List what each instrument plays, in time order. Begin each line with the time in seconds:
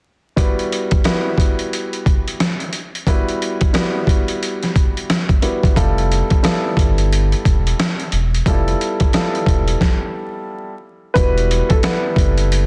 0.36 grand piano G3 B3 E4 F#4 B4, kick, closed hi-hat
0.59 closed hi-hat
0.72 closed hi-hat
0.91 kick, closed hi-hat
1.04 grand piano G3 B3 E4 F#4 B4, cross-stick, snare, closed hi-hat
1.38 kick, closed hi-hat
1.59 closed hi-hat
1.73 closed hi-hat
1.93 closed hi-hat
2.06 kick, closed hi-hat
2.28 closed hi-hat
2.40 cross-stick, snare, closed hi-hat
2.60 closed hi-hat
2.73 closed hi-hat
2.95 closed hi-hat
3.07 grand piano G3 B3 E4 F#4 B4, kick, closed hi-hat
3.28 closed hi-hat
3.42 closed hi-hat
3.61 kick, closed hi-hat
3.73 grand piano G3 B3 E4 F#4 B4, cross-stick, snare, closed hi-hat
4.07 kick, closed hi-hat
4.28 closed hi-hat
4.43 closed hi-hat
4.63 snare, closed hi-hat
4.76 kick, closed hi-hat
4.97 closed hi-hat
5.10 cross-stick, snare, closed hi-hat
5.29 kick, closed hi-hat
5.42 grand piano G3 B3 E4 F#4 B4, closed hi-hat
5.63 kick, closed hi-hat
5.76 sub bass F1, grand piano G3 B3 E4 F4 A4, kick, closed hi-hat
5.98 closed hi-hat
6.12 closed hi-hat
6.30 kick, closed hi-hat
6.43 grand piano G3 B3 E4 F4 A4, cross-stick, snare, closed hi-hat
6.77 sub bass G1, kick, closed hi-hat
6.98 closed hi-hat
7.12 closed hi-hat
7.32 closed hi-hat
7.45 sub bass E1, kick, closed hi-hat
7.67 closed hi-hat
7.80 cross-stick, snare, closed hi-hat
8.00 closed hi-hat
8.12 sub bass E1, closed hi-hat
8.35 closed hi-hat
8.46 sub bass F1, grand piano G3 B3 E4 F4 A4, kick, closed hi-hat
8.68 closed hi-hat
8.81 closed hi-hat
9.00 kick, closed hi-hat
9.13 grand piano G3 B3 E4 F4 A4, cross-stick, snare, closed hi-hat
9.35 closed hi-hat
9.46 sub bass E1, kick, closed hi-hat
9.68 closed hi-hat
9.81 kick, snare
11.14 sub bass E1, grand piano G3 B3 E4 F#4 B4, upright piano B4, kick, closed hi-hat
11.38 closed hi-hat
11.51 closed hi-hat
11.69 upright piano A4, kick, closed hi-hat
11.83 grand piano G3 B3 E4 B4 F#5, cross-stick, snare, closed hi-hat
12.16 sub bass F#1, kick, closed hi-hat
12.38 closed hi-hat
12.52 closed hi-hat